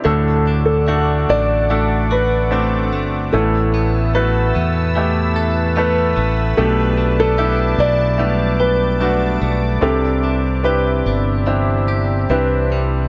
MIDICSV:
0, 0, Header, 1, 6, 480
1, 0, Start_track
1, 0, Tempo, 819672
1, 26, Time_signature, 4, 2, 24, 8
1, 2426, Tempo, 810811
1, 5786, Tempo, 825309
1, 7683, End_track
2, 0, Start_track
2, 0, Title_t, "Analog synth pad"
2, 0, Program_c, 0, 89
2, 30, Note_on_c, 0, 86, 81
2, 31, Note_on_c, 0, 78, 70
2, 32, Note_on_c, 0, 74, 73
2, 34, Note_on_c, 0, 69, 80
2, 1932, Note_off_c, 0, 86, 0
2, 1933, Note_off_c, 0, 74, 0
2, 1933, Note_off_c, 0, 78, 0
2, 1934, Note_off_c, 0, 69, 0
2, 1949, Note_on_c, 0, 71, 72
2, 1950, Note_on_c, 0, 76, 68
2, 1951, Note_on_c, 0, 81, 68
2, 1952, Note_on_c, 0, 88, 82
2, 3847, Note_off_c, 0, 76, 0
2, 3848, Note_off_c, 0, 81, 0
2, 3849, Note_off_c, 0, 88, 0
2, 3864, Note_on_c, 0, 74, 64
2, 3864, Note_on_c, 0, 81, 67
2, 3866, Note_on_c, 0, 86, 84
2, 5766, Note_off_c, 0, 71, 0
2, 5769, Note_off_c, 0, 81, 0
2, 5786, Note_on_c, 0, 76, 74
2, 5787, Note_on_c, 0, 60, 70
2, 7683, Note_off_c, 0, 60, 0
2, 7683, Note_off_c, 0, 74, 0
2, 7683, Note_off_c, 0, 76, 0
2, 7683, Note_off_c, 0, 86, 0
2, 7683, End_track
3, 0, Start_track
3, 0, Title_t, "Grand piano"
3, 0, Program_c, 1, 0
3, 27, Note_on_c, 1, 69, 81
3, 375, Note_off_c, 1, 69, 0
3, 384, Note_on_c, 1, 69, 85
3, 760, Note_off_c, 1, 69, 0
3, 761, Note_on_c, 1, 74, 108
3, 1241, Note_on_c, 1, 71, 90
3, 1248, Note_off_c, 1, 74, 0
3, 1692, Note_off_c, 1, 71, 0
3, 1948, Note_on_c, 1, 69, 75
3, 2428, Note_on_c, 1, 71, 95
3, 2441, Note_off_c, 1, 69, 0
3, 3386, Note_off_c, 1, 71, 0
3, 3395, Note_on_c, 1, 71, 87
3, 3846, Note_off_c, 1, 71, 0
3, 3865, Note_on_c, 1, 69, 89
3, 4226, Note_off_c, 1, 69, 0
3, 4235, Note_on_c, 1, 69, 110
3, 4566, Note_off_c, 1, 69, 0
3, 4592, Note_on_c, 1, 74, 106
3, 5045, Note_off_c, 1, 74, 0
3, 5064, Note_on_c, 1, 71, 90
3, 5523, Note_off_c, 1, 71, 0
3, 5789, Note_on_c, 1, 69, 81
3, 6265, Note_on_c, 1, 71, 87
3, 6281, Note_off_c, 1, 69, 0
3, 7202, Note_off_c, 1, 71, 0
3, 7231, Note_on_c, 1, 71, 78
3, 7683, Note_off_c, 1, 71, 0
3, 7683, End_track
4, 0, Start_track
4, 0, Title_t, "Clean electric guitar"
4, 0, Program_c, 2, 27
4, 29, Note_on_c, 2, 50, 81
4, 277, Note_on_c, 2, 62, 60
4, 516, Note_on_c, 2, 66, 58
4, 752, Note_off_c, 2, 62, 0
4, 759, Note_on_c, 2, 62, 57
4, 996, Note_on_c, 2, 57, 68
4, 1228, Note_off_c, 2, 66, 0
4, 1235, Note_on_c, 2, 66, 67
4, 1471, Note_off_c, 2, 62, 0
4, 1478, Note_on_c, 2, 62, 57
4, 1711, Note_off_c, 2, 57, 0
4, 1714, Note_on_c, 2, 57, 59
4, 1949, Note_on_c, 2, 45, 78
4, 1951, Note_off_c, 2, 50, 0
4, 2000, Note_off_c, 2, 66, 0
4, 2002, Note_off_c, 2, 62, 0
4, 2189, Note_on_c, 2, 59, 59
4, 2206, Note_off_c, 2, 57, 0
4, 2430, Note_on_c, 2, 69, 64
4, 2664, Note_off_c, 2, 59, 0
4, 2667, Note_on_c, 2, 59, 58
4, 2905, Note_on_c, 2, 52, 72
4, 3144, Note_off_c, 2, 69, 0
4, 3146, Note_on_c, 2, 69, 74
4, 3380, Note_off_c, 2, 59, 0
4, 3382, Note_on_c, 2, 59, 59
4, 3622, Note_on_c, 2, 57, 60
4, 3865, Note_off_c, 2, 45, 0
4, 3867, Note_on_c, 2, 47, 84
4, 3913, Note_off_c, 2, 52, 0
4, 4099, Note_off_c, 2, 59, 0
4, 4102, Note_on_c, 2, 62, 61
4, 4341, Note_off_c, 2, 69, 0
4, 4344, Note_on_c, 2, 67, 67
4, 4361, Note_off_c, 2, 57, 0
4, 4585, Note_off_c, 2, 62, 0
4, 4587, Note_on_c, 2, 62, 63
4, 4824, Note_on_c, 2, 55, 78
4, 5060, Note_off_c, 2, 67, 0
4, 5063, Note_on_c, 2, 67, 71
4, 5303, Note_off_c, 2, 62, 0
4, 5305, Note_on_c, 2, 62, 60
4, 5548, Note_on_c, 2, 57, 58
4, 5783, Note_off_c, 2, 47, 0
4, 5786, Note_on_c, 2, 48, 78
4, 5838, Note_off_c, 2, 57, 0
4, 6026, Note_off_c, 2, 62, 0
4, 6029, Note_on_c, 2, 62, 60
4, 6269, Note_off_c, 2, 67, 0
4, 6271, Note_on_c, 2, 67, 62
4, 6509, Note_off_c, 2, 62, 0
4, 6511, Note_on_c, 2, 62, 64
4, 6741, Note_off_c, 2, 55, 0
4, 6744, Note_on_c, 2, 52, 68
4, 6979, Note_off_c, 2, 67, 0
4, 6986, Note_on_c, 2, 67, 65
4, 7226, Note_off_c, 2, 62, 0
4, 7229, Note_on_c, 2, 62, 57
4, 7473, Note_on_c, 2, 55, 60
4, 7683, Note_off_c, 2, 48, 0
4, 7683, Note_off_c, 2, 52, 0
4, 7683, Note_off_c, 2, 55, 0
4, 7683, Note_off_c, 2, 62, 0
4, 7683, Note_off_c, 2, 67, 0
4, 7683, End_track
5, 0, Start_track
5, 0, Title_t, "Grand piano"
5, 0, Program_c, 3, 0
5, 0, Control_c, 3, 64, 127
5, 25, Note_on_c, 3, 57, 71
5, 30, Note_on_c, 3, 45, 66
5, 30, Note_on_c, 3, 62, 64
5, 32, Note_on_c, 3, 66, 65
5, 34, Control_c, 3, 64, 0
5, 37, Note_on_c, 3, 69, 80
5, 150, Control_c, 3, 64, 127
5, 485, Note_off_c, 3, 57, 0
5, 488, Note_off_c, 3, 62, 0
5, 489, Note_off_c, 3, 66, 0
5, 491, Note_off_c, 3, 69, 0
5, 513, Note_on_c, 3, 57, 70
5, 518, Note_on_c, 3, 62, 63
5, 520, Note_on_c, 3, 69, 76
5, 521, Note_on_c, 3, 66, 60
5, 730, Note_off_c, 3, 45, 0
5, 968, Note_off_c, 3, 57, 0
5, 971, Note_off_c, 3, 62, 0
5, 972, Note_off_c, 3, 66, 0
5, 972, Note_off_c, 3, 69, 0
5, 995, Note_on_c, 3, 57, 62
5, 997, Note_on_c, 3, 62, 66
5, 998, Note_on_c, 3, 66, 61
5, 1001, Note_on_c, 3, 69, 80
5, 1447, Note_off_c, 3, 57, 0
5, 1448, Note_off_c, 3, 62, 0
5, 1449, Note_off_c, 3, 66, 0
5, 1450, Note_off_c, 3, 69, 0
5, 1468, Note_on_c, 3, 62, 65
5, 1469, Note_on_c, 3, 57, 69
5, 1471, Note_on_c, 3, 66, 62
5, 1472, Note_on_c, 3, 60, 80
5, 1925, Note_off_c, 3, 57, 0
5, 1925, Note_off_c, 3, 62, 0
5, 1926, Note_off_c, 3, 66, 0
5, 1927, Note_off_c, 3, 60, 0
5, 1953, Note_on_c, 3, 45, 64
5, 1953, Note_on_c, 3, 57, 79
5, 1953, Note_on_c, 3, 59, 68
5, 1954, Note_on_c, 3, 64, 66
5, 1955, Note_on_c, 3, 52, 64
5, 1957, Control_c, 3, 64, 0
5, 1957, Note_on_c, 3, 69, 79
5, 2058, Control_c, 3, 64, 127
5, 2405, Note_off_c, 3, 57, 0
5, 2405, Note_off_c, 3, 59, 0
5, 2406, Note_off_c, 3, 64, 0
5, 2407, Note_off_c, 3, 69, 0
5, 2430, Note_on_c, 3, 57, 70
5, 2432, Note_on_c, 3, 59, 65
5, 2434, Note_on_c, 3, 64, 63
5, 2438, Note_on_c, 3, 66, 78
5, 2646, Note_off_c, 3, 45, 0
5, 2647, Note_off_c, 3, 52, 0
5, 2885, Note_off_c, 3, 57, 0
5, 2886, Note_off_c, 3, 59, 0
5, 2887, Note_off_c, 3, 64, 0
5, 2889, Note_off_c, 3, 66, 0
5, 2913, Note_on_c, 3, 57, 72
5, 2917, Note_on_c, 3, 59, 62
5, 2920, Note_on_c, 3, 64, 68
5, 2921, Note_on_c, 3, 67, 74
5, 3365, Note_off_c, 3, 57, 0
5, 3368, Note_off_c, 3, 59, 0
5, 3369, Note_off_c, 3, 64, 0
5, 3369, Note_off_c, 3, 67, 0
5, 3388, Note_on_c, 3, 57, 79
5, 3391, Note_on_c, 3, 59, 70
5, 3395, Note_on_c, 3, 64, 66
5, 3398, Note_on_c, 3, 69, 84
5, 3843, Note_off_c, 3, 57, 0
5, 3844, Note_off_c, 3, 59, 0
5, 3846, Note_off_c, 3, 64, 0
5, 3848, Note_off_c, 3, 69, 0
5, 3868, Note_on_c, 3, 57, 81
5, 3868, Note_on_c, 3, 59, 68
5, 3869, Note_on_c, 3, 47, 69
5, 3870, Note_on_c, 3, 62, 71
5, 3874, Control_c, 3, 64, 0
5, 3874, Note_on_c, 3, 67, 83
5, 3979, Control_c, 3, 64, 127
5, 4322, Note_off_c, 3, 57, 0
5, 4322, Note_off_c, 3, 59, 0
5, 4323, Note_off_c, 3, 62, 0
5, 4325, Note_off_c, 3, 67, 0
5, 4342, Note_on_c, 3, 57, 68
5, 4345, Note_on_c, 3, 59, 61
5, 4348, Note_on_c, 3, 62, 66
5, 4348, Note_on_c, 3, 64, 85
5, 4562, Note_off_c, 3, 47, 0
5, 4799, Note_off_c, 3, 57, 0
5, 4800, Note_off_c, 3, 59, 0
5, 4802, Note_off_c, 3, 62, 0
5, 4802, Note_off_c, 3, 64, 0
5, 4816, Note_on_c, 3, 57, 67
5, 4820, Note_on_c, 3, 59, 67
5, 4825, Note_on_c, 3, 64, 72
5, 4826, Note_on_c, 3, 62, 64
5, 5278, Note_off_c, 3, 57, 0
5, 5279, Note_off_c, 3, 59, 0
5, 5282, Note_off_c, 3, 62, 0
5, 5282, Note_off_c, 3, 64, 0
5, 5303, Note_on_c, 3, 57, 69
5, 5307, Note_on_c, 3, 59, 70
5, 5308, Note_on_c, 3, 62, 68
5, 5315, Note_on_c, 3, 66, 84
5, 5764, Note_off_c, 3, 57, 0
5, 5766, Note_off_c, 3, 59, 0
5, 5766, Note_off_c, 3, 62, 0
5, 5770, Note_off_c, 3, 66, 0
5, 5782, Note_on_c, 3, 60, 79
5, 5782, Note_on_c, 3, 62, 69
5, 5786, Note_on_c, 3, 48, 64
5, 5787, Note_on_c, 3, 55, 69
5, 5787, Note_on_c, 3, 64, 64
5, 5790, Note_on_c, 3, 67, 83
5, 5797, Control_c, 3, 64, 0
5, 5899, Control_c, 3, 64, 127
5, 6239, Note_off_c, 3, 60, 0
5, 6239, Note_off_c, 3, 62, 0
5, 6242, Note_off_c, 3, 64, 0
5, 6243, Note_off_c, 3, 67, 0
5, 6261, Note_on_c, 3, 60, 71
5, 6266, Note_on_c, 3, 62, 61
5, 6266, Note_on_c, 3, 67, 75
5, 6269, Note_on_c, 3, 64, 66
5, 6481, Note_off_c, 3, 48, 0
5, 6481, Note_off_c, 3, 55, 0
5, 6718, Note_off_c, 3, 60, 0
5, 6720, Note_off_c, 3, 62, 0
5, 6720, Note_off_c, 3, 67, 0
5, 6722, Note_off_c, 3, 64, 0
5, 6745, Note_on_c, 3, 60, 67
5, 6745, Note_on_c, 3, 62, 62
5, 6747, Note_on_c, 3, 64, 65
5, 6752, Note_on_c, 3, 67, 75
5, 7202, Note_off_c, 3, 60, 0
5, 7202, Note_off_c, 3, 62, 0
5, 7203, Note_off_c, 3, 64, 0
5, 7205, Note_off_c, 3, 67, 0
5, 7228, Note_on_c, 3, 60, 78
5, 7232, Note_on_c, 3, 62, 65
5, 7234, Note_on_c, 3, 67, 81
5, 7235, Note_on_c, 3, 64, 67
5, 7683, Note_off_c, 3, 60, 0
5, 7683, Note_off_c, 3, 62, 0
5, 7683, Note_off_c, 3, 64, 0
5, 7683, Note_off_c, 3, 67, 0
5, 7683, End_track
6, 0, Start_track
6, 0, Title_t, "Fingered electric bass"
6, 0, Program_c, 4, 33
6, 31, Note_on_c, 4, 38, 88
6, 731, Note_off_c, 4, 38, 0
6, 758, Note_on_c, 4, 33, 82
6, 1715, Note_off_c, 4, 33, 0
6, 1715, Note_on_c, 4, 31, 86
6, 1936, Note_off_c, 4, 31, 0
6, 1954, Note_on_c, 4, 33, 96
6, 2647, Note_off_c, 4, 33, 0
6, 2672, Note_on_c, 4, 40, 82
6, 3605, Note_off_c, 4, 40, 0
6, 3627, Note_on_c, 4, 33, 94
6, 3850, Note_off_c, 4, 33, 0
6, 3868, Note_on_c, 4, 35, 100
6, 4562, Note_off_c, 4, 35, 0
6, 4581, Note_on_c, 4, 35, 100
6, 5522, Note_off_c, 4, 35, 0
6, 5547, Note_on_c, 4, 35, 83
6, 5772, Note_off_c, 4, 35, 0
6, 5787, Note_on_c, 4, 36, 93
6, 6481, Note_off_c, 4, 36, 0
6, 6507, Note_on_c, 4, 31, 95
6, 7204, Note_off_c, 4, 31, 0
6, 7227, Note_on_c, 4, 36, 90
6, 7683, Note_off_c, 4, 36, 0
6, 7683, End_track
0, 0, End_of_file